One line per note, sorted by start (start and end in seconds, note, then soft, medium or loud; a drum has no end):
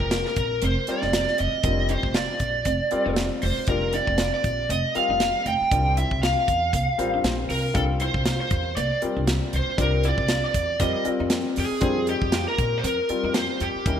0.00 0.22 F1 medium
0.00 0.51 G3 medium
0.00 0.51 C4 medium
0.00 0.51 F4 medium
0.00 0.26 A#4 medium
0.00 0.51 A#4 soft
0.00 0.51 D5 medium
0.00 kick medium
0.11 0.25 F4 medium
0.11 snare loud
0.11 closed hi-hat medium
0.25 0.64 A#4 medium
0.25 snare soft
0.36 0.59 A#1 medium
0.36 kick medium
0.36 closed hi-hat medium
0.62 0.75 F1 medium
0.62 0.76 C4 medium
0.62 0.87 C5 medium
0.62 closed hi-hat medium
0.87 1.56 G3 medium
0.87 1.56 C4 medium
0.87 1.56 F4 medium
0.87 1.56 A#4 medium
0.87 1.56 D5 medium
0.87 1.39 D5 medium
0.87 muted upright bass stroke soft
0.87 closed hi-hat medium
1.02 1.25 F1 medium
1.02 1.16 D#4 medium
1.02 snare soft
1.13 snare medium
1.13 closed hi-hat medium
1.27 snare soft
1.38 1.52 F1 medium
1.38 1.92 D#5 medium
1.38 closed hi-hat medium
1.54 muted upright bass stroke soft
1.63 1.98 F1 medium
1.63 2.54 G3 medium
1.63 2.54 C4 medium
1.63 1.78 D4 medium
1.63 2.54 F4 medium
1.63 2.54 A#4 medium
1.63 2.54 D5 medium
1.63 kick medium
1.63 closed hi-hat medium
1.89 2.03 D#4 medium
1.89 2.14 C5 medium
1.89 closed hi-hat medium
2.03 2.26 F1 medium
2.03 kick medium
2.14 2.29 F4 medium
2.14 3.13 D5 medium
2.14 snare medium
2.14 closed hi-hat medium
2.40 2.62 A#1 medium
2.40 kick medium
2.40 closed hi-hat soft
2.65 2.78 F1 medium
2.65 2.80 C4 medium
2.65 kick medium
2.65 closed hi-hat medium
2.91 3.59 G3 medium
2.91 3.59 C4 medium
2.91 3.59 F4 medium
2.91 3.60 A#4 medium
2.91 3.60 D5 medium
2.91 muted upright bass stroke soft
2.91 closed hi-hat soft
3.06 3.28 F1 medium
3.06 3.19 D#4 medium
3.16 snare loud
3.16 closed hi-hat medium
3.42 3.55 F1 medium
3.42 3.69 C5 medium
3.42 open hi-hat medium
3.57 muted upright bass stroke soft
3.67 4.02 F1 medium
3.67 4.59 G3 medium
3.67 4.58 C4 medium
3.67 3.81 D4 medium
3.67 4.59 F4 medium
3.67 4.59 A#4 soft
3.67 3.95 A#4 medium
3.67 4.59 D5 medium
3.67 kick medium
3.67 closed hi-hat medium
3.93 4.07 D#4 medium
3.93 4.33 D5 medium
3.93 closed hi-hat medium
4.07 4.30 F1 medium
4.07 kick medium
4.18 4.33 F4 medium
4.18 snare medium
4.18 closed hi-hat medium
4.34 4.70 D5 medium
4.44 4.66 A#1 medium
4.44 kick medium
4.44 closed hi-hat soft
4.69 4.82 F1 medium
4.69 4.84 C4 medium
4.69 4.94 D#5 medium
4.69 closed hi-hat medium
4.95 5.63 G3 medium
4.95 5.63 C4 soft
4.95 5.63 F4 medium
4.95 5.63 A#4 medium
4.95 5.63 D#5 medium
4.95 5.47 F5 medium
4.95 muted upright bass stroke soft
4.95 closed hi-hat medium
5.09 5.31 F1 medium
5.09 5.23 D#4 medium
5.20 snare medium
5.20 closed hi-hat medium
5.46 5.58 F1 medium
5.46 5.97 G5 medium
5.46 closed hi-hat medium
5.61 muted upright bass stroke soft
5.71 6.06 C2 medium
5.71 6.62 G3 medium
5.71 6.62 C4 medium
5.71 5.85 D4 medium
5.71 6.62 F4 medium
5.71 6.62 A#4 medium
5.71 6.62 D5 medium
5.71 kick medium
5.71 closed hi-hat medium
5.97 6.11 E4 medium
5.97 6.22 E5 medium
5.97 closed hi-hat medium
6.11 6.33 C2 medium
6.11 kick medium
6.22 6.37 F4 medium
6.22 7.20 F5 medium
6.22 snare medium
6.22 closed hi-hat medium
6.48 6.70 E2 medium
6.48 kick medium
6.48 closed hi-hat medium
6.73 6.86 C2 medium
6.73 6.87 A#3 medium
6.73 kick medium
6.73 closed hi-hat medium
6.98 7.22 A1 medium
6.98 7.66 G3 medium
6.98 7.66 C4 medium
6.98 7.66 F4 medium
6.98 7.66 A#4 medium
6.98 7.67 C5 medium
6.98 closed hi-hat soft
7.14 7.27 D4 medium
7.24 7.47 A#1 medium
7.24 snare medium
7.24 closed hi-hat medium
7.49 7.73 C2 medium
7.49 7.75 A#4 medium
7.49 open hi-hat medium
7.74 8.09 C2 medium
7.74 8.65 G3 medium
7.74 8.65 C4 medium
7.74 7.89 D4 medium
7.74 8.65 F4 medium
7.74 7.82 A4 medium
7.74 8.65 A#4 medium
7.74 8.65 F5 medium
7.74 kick loud
7.74 closed hi-hat medium
8.00 8.15 E4 medium
8.00 8.39 C5 medium
8.00 closed hi-hat medium
8.14 8.36 C2 medium
8.14 kick medium
8.25 8.40 F4 medium
8.25 snare medium
8.25 closed hi-hat medium
8.40 8.76 C5 medium
8.51 8.73 E2 medium
8.51 kick medium
8.51 closed hi-hat soft
8.77 8.89 C2 medium
8.77 8.91 A#3 medium
8.77 9.01 D5 medium
8.77 closed hi-hat medium
9.02 9.70 G3 medium
9.02 9.70 C4 medium
9.02 9.70 F4 medium
9.02 9.70 A#4 medium
9.02 9.70 D5 medium
9.02 muted upright bass stroke soft
9.02 closed hi-hat soft
9.17 9.39 C2 medium
9.17 9.30 D4 medium
9.27 snare medium
9.27 closed hi-hat medium
9.53 9.66 C2 medium
9.53 9.78 C5 medium
9.53 closed hi-hat soft
9.67 muted upright bass stroke soft
9.77 10.13 C2 medium
9.77 10.68 G3 medium
9.77 10.69 C4 medium
9.77 9.92 D4 medium
9.77 10.68 F4 medium
9.77 10.69 A#4 soft
9.77 10.06 A#4 medium
9.77 10.69 D5 medium
9.77 kick loud
9.77 closed hi-hat medium
10.04 10.18 E4 medium
10.04 10.44 D5 medium
10.04 closed hi-hat medium
10.18 10.40 C2 medium
10.18 kick medium
10.28 10.43 F4 medium
10.28 snare medium
10.28 closed hi-hat medium
10.45 10.80 D5 medium
10.54 10.77 E2 medium
10.54 kick medium
10.54 closed hi-hat medium
10.80 10.93 F2 medium
10.80 11.03 G3 medium
10.80 11.03 C4 medium
10.80 10.94 C4 medium
10.80 11.03 F4 medium
10.80 11.03 A#4 medium
10.80 11.03 D5 medium
10.80 11.04 D#5 medium
10.80 kick medium
10.80 closed hi-hat medium
11.05 11.73 G3 medium
11.05 11.73 C4 medium
11.05 11.73 F4 medium
11.05 11.73 A#4 medium
11.05 11.73 D5 medium
11.05 muted upright bass stroke soft
11.05 closed hi-hat soft
11.20 11.42 F2 medium
11.20 11.34 D#4 medium
11.30 snare medium
11.30 closed hi-hat medium
11.56 11.70 F2 medium
11.56 12.09 G#4 medium
11.56 open hi-hat medium
11.71 muted upright bass stroke soft
11.81 12.16 F2 medium
11.81 12.72 G3 medium
11.81 12.72 C4 medium
11.81 11.96 D4 medium
11.81 12.72 F4 medium
11.81 12.72 A#4 medium
11.81 12.72 C5 medium
11.81 kick medium
11.81 closed hi-hat medium
12.07 12.22 D#4 medium
12.07 12.48 G4 medium
12.07 closed hi-hat soft
12.22 12.44 F2 medium
12.22 kick medium
12.32 12.47 F4 medium
12.32 snare medium
12.32 closed hi-hat medium
12.48 12.80 A#4 medium
12.58 12.81 A#2 medium
12.58 kick medium
12.58 closed hi-hat soft
12.78 12.84 C5 medium
12.83 12.96 F2 medium
12.83 12.98 C4 medium
12.83 13.37 A#4 medium
12.83 closed hi-hat medium
13.09 13.78 G3 medium
13.09 13.78 C4 medium
13.09 13.78 F4 medium
13.09 13.78 A#4 medium
13.09 13.78 D5 medium
13.09 muted upright bass stroke soft
13.09 closed hi-hat soft
13.23 13.46 F2 medium
13.23 13.38 D#4 medium
13.34 13.62 C5 medium
13.34 snare loud
13.34 closed hi-hat medium
13.60 13.73 F2 medium
13.60 14.00 G4 medium
13.60 closed hi-hat medium
13.75 muted upright bass stroke soft
13.86 14.00 D#2 medium
13.86 14.00 G3 medium
13.86 14.00 C#4 medium
13.86 14.00 D#4 medium
13.86 14.00 E4 soft
13.86 14.00 A#4 medium
13.86 kick loud
13.86 closed hi-hat medium